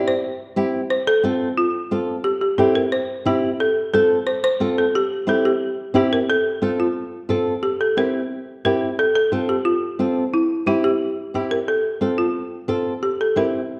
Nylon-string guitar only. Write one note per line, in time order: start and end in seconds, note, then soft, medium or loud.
0.00 0.13 C4 medium
0.00 0.13 E4 medium
0.00 0.13 G4 medium
0.56 0.80 C4 medium
0.56 0.80 E4 medium
0.56 0.81 G4 medium
1.23 1.47 C4 medium
1.23 1.48 F4 medium
1.23 1.48 A4 medium
1.91 2.15 C4 medium
1.91 2.15 F4 medium
1.91 2.15 A4 medium
2.58 2.82 C4 medium
2.58 2.82 E4 medium
2.58 2.82 G4 medium
3.25 3.49 C4 medium
3.25 3.50 E4 medium
3.25 3.50 G4 medium
3.93 4.17 C4 medium
3.93 4.17 F4 medium
3.93 4.17 A4 medium
4.60 4.84 C4 medium
4.60 4.84 F4 medium
4.60 4.84 A4 medium
5.27 5.51 C4 medium
5.27 5.51 E4 medium
5.27 5.51 G4 medium
5.94 6.18 C4 medium
5.94 6.18 E4 medium
5.94 6.19 G4 loud
6.62 6.86 C4 medium
6.62 6.86 F4 medium
6.62 6.86 A4 medium
7.29 7.53 C4 medium
7.29 7.53 F4 medium
7.29 7.53 A4 medium
7.97 8.21 C4 medium
7.97 8.21 E4 medium
7.97 8.21 G4 medium
8.65 8.88 C4 medium
8.65 8.89 E4 medium
8.65 8.89 G4 medium
9.32 9.56 C4 medium
9.32 9.56 F4 medium
9.32 9.56 A4 medium
9.99 10.23 C4 medium
9.99 10.23 F4 medium
9.99 10.23 A4 medium
10.66 10.90 C4 medium
10.66 10.91 E4 medium
10.66 10.91 G4 medium
11.34 11.58 C4 medium
11.34 11.58 E4 medium
11.34 11.58 G4 medium
12.01 12.25 C4 medium
12.01 12.25 F4 medium
12.01 12.25 A4 medium
12.68 12.92 C4 medium
12.68 12.92 F4 medium
12.68 12.93 A4 medium
13.36 13.60 C4 medium
13.36 13.60 E4 medium
13.36 13.60 G4 medium